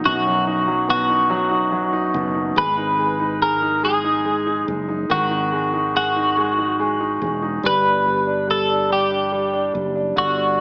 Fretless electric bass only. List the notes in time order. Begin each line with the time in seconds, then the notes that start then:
0.06 B1
2.14 F#1
2.56 G#1
4.68 F#1
5.10 G#1
7.22 E1
7.63 G1
9.75 F#1
10.16 G1